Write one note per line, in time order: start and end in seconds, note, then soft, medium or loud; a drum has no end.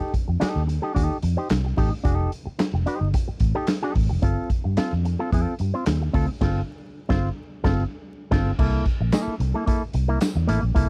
0.00 0.12 D#4 medium
0.00 0.13 G4 medium
0.00 0.13 A4 medium
0.14 muted fingered electric bass stroke soft
0.14 kick medium
0.14 closed hi-hat medium
0.28 0.39 F2 medium
0.28 muted clean electric guitar stroke soft
0.40 0.61 D#4 medium
0.40 0.62 G4 medium
0.40 0.62 A4 medium
0.40 muted fingered electric bass stroke medium
0.40 snare loud
0.40 clap medium
0.40 closed hi-hat loud
0.56 0.78 D#2 medium
0.67 muted clean electric guitar stroke soft
0.67 closed hi-hat medium
0.82 0.93 D#4 medium
0.82 0.93 G4 medium
0.82 0.93 A4 medium
0.94 1.08 D#2 medium
0.94 1.16 D#4 medium
0.94 1.16 G4 medium
0.94 1.17 A4 loud
0.94 kick medium
0.94 closed hi-hat medium
1.22 1.35 F2 loud
1.22 muted clean electric guitar stroke soft
1.22 closed hi-hat medium
1.37 1.48 D#4 soft
1.37 1.48 G4 medium
1.37 1.48 C5 medium
1.49 1.73 C2 medium
1.49 muted clean electric guitar stroke soft
1.49 snare loud
1.49 clap loud
1.49 closed hi-hat loud
1.65 muted clean electric guitar stroke soft
1.77 1.90 A1 medium
1.77 1.92 D#4 medium
1.77 1.92 G4 medium
1.77 1.90 A4 medium
1.77 kick medium
1.77 open hi-hat medium
1.92 muted clean electric guitar stroke soft
2.04 2.27 F1 loud
2.04 2.15 D4 medium
2.04 2.16 F#4 medium
2.04 2.16 G#4 medium
2.04 kick loud
2.04 closed hi-hat medium
2.15 2.30 D#4 medium
2.15 2.30 G4 medium
2.15 2.30 A4 medium
2.32 closed hi-hat medium
2.46 muted clean electric guitar stroke soft
2.46 muted fingered electric bass stroke soft
2.59 muted clean electric guitar stroke soft
2.59 snare loud
2.59 clap medium
2.59 closed hi-hat medium
2.74 2.84 F1 medium
2.74 muted clean electric guitar stroke soft
2.86 3.07 D#4 medium
2.86 3.01 G4 medium
2.86 3.01 C5 medium
2.86 closed hi-hat medium
3.01 3.12 G1 loud
3.01 muted clean electric guitar stroke soft
3.14 muted clean electric guitar stroke soft
3.14 kick medium
3.14 closed hi-hat loud
3.28 muted clean electric guitar stroke soft
3.28 muted fingered electric bass stroke soft
3.40 3.53 A1 medium
3.40 kick medium
3.40 closed hi-hat medium
3.55 3.67 D#4 medium
3.55 3.68 G4 medium
3.55 3.68 A4 medium
3.67 muted clean electric guitar stroke soft
3.67 snare loud
3.67 clap loud
3.67 closed hi-hat loud
3.83 3.94 D#4 medium
3.83 3.95 G4 medium
3.83 3.96 A4 medium
3.95 4.08 A1 medium
3.95 kick medium
3.95 open hi-hat medium
4.09 4.21 F1 medium
4.09 muted clean electric guitar stroke medium
4.22 4.35 G1 loud
4.22 4.48 C4 medium
4.22 4.48 F4 medium
4.22 4.49 A4 medium
4.22 kick loud
4.22 closed hi-hat medium
4.50 muted fingered electric bass stroke soft
4.50 kick medium
4.50 closed hi-hat medium
4.64 4.76 G2 medium
4.64 muted clean electric guitar stroke soft
4.77 4.92 C4 medium
4.77 4.92 F4 medium
4.77 4.93 A4 medium
4.77 muted fingered electric bass stroke medium
4.77 snare loud
4.77 clap medium
4.77 closed hi-hat loud
4.93 5.15 F2 medium
5.05 muted clean electric guitar stroke soft
5.05 closed hi-hat medium
5.19 5.30 C4 medium
5.19 5.30 F4 medium
5.19 5.30 A4 medium
5.32 5.44 F2 medium
5.32 5.53 C4 medium
5.32 5.53 F4 medium
5.32 5.54 A4 medium
5.32 kick medium
5.32 closed hi-hat medium
5.59 5.72 G2 medium
5.59 muted clean electric guitar stroke soft
5.59 closed hi-hat medium
5.74 5.85 C4 soft
5.74 5.85 F4 soft
5.74 5.84 C5 medium
5.86 6.09 D#2 medium
5.86 muted clean electric guitar stroke soft
5.86 snare loud
5.86 clap loud
5.86 closed hi-hat loud
6.02 muted clean electric guitar stroke soft
6.13 6.26 D2 medium
6.13 6.28 C4 medium
6.13 6.28 F4 medium
6.13 6.27 A4 loud
6.13 kick medium
6.13 open hi-hat medium
6.28 muted clean electric guitar stroke soft
6.41 6.60 G1 loud
6.41 6.60 C4 medium
6.41 6.60 F4 medium
6.41 6.61 A4 medium
6.41 kick loud
6.41 snare loud
6.41 crash medium
7.09 7.28 G1 loud
7.09 7.28 C4 loud
7.09 7.28 F4 loud
7.09 7.29 C5 loud
7.09 kick loud
7.09 snare loud
7.64 7.83 G1 loud
7.64 7.83 C4 loud
7.64 7.83 F4 loud
7.64 7.82 A4 loud
7.64 kick loud
7.64 snare loud
8.31 8.50 G1 loud
8.31 8.51 C4 loud
8.31 8.50 F4 loud
8.31 8.50 A4 loud
8.31 kick loud
8.31 snare loud
8.31 crash medium
8.59 8.81 C2 loud
8.59 8.84 A#3 medium
8.59 8.84 E4 medium
8.59 8.85 A4 loud
8.59 kick loud
8.59 crash medium
8.86 kick medium
8.86 closed hi-hat medium
9.00 9.11 A#1 medium
9.00 muted clean electric guitar stroke soft
9.12 9.33 A#3 medium
9.12 9.34 E4 loud
9.12 9.34 A4 loud
9.12 snare loud
9.12 clap loud
9.12 closed hi-hat loud
9.12 tambourine medium
9.27 muted fingered electric bass stroke medium
9.40 9.52 C2 loud
9.40 muted clean electric guitar stroke soft
9.40 closed hi-hat medium
9.54 9.65 A#3 medium
9.54 9.65 E4 medium
9.54 9.64 A4 medium
9.66 9.81 A#3 medium
9.66 9.82 E4 medium
9.66 9.82 A4 loud
9.66 kick medium
9.66 closed hi-hat medium
9.93 10.16 C2 loud
9.93 muted clean electric guitar stroke soft
9.93 closed hi-hat medium
10.08 10.19 A#3 medium
10.08 10.19 E4 medium
10.08 10.19 A#4 medium
10.21 muted clean electric guitar stroke medium
10.21 snare loud
10.21 clap loud
10.21 closed hi-hat loud
10.21 tambourine medium
10.35 10.46 E2 medium
10.35 muted clean electric guitar stroke soft
10.47 10.60 A1 loud
10.47 10.62 A#3 medium
10.47 10.62 E4 medium
10.47 10.61 A4 loud
10.47 closed hi-hat medium
10.62 10.73 A#1 medium
10.62 muted clean electric guitar stroke medium
10.75 10.89 C2 loud
10.75 10.89 A#3 medium
10.75 10.89 E4 medium
10.75 10.89 A4 medium
10.75 kick loud
10.75 closed hi-hat loud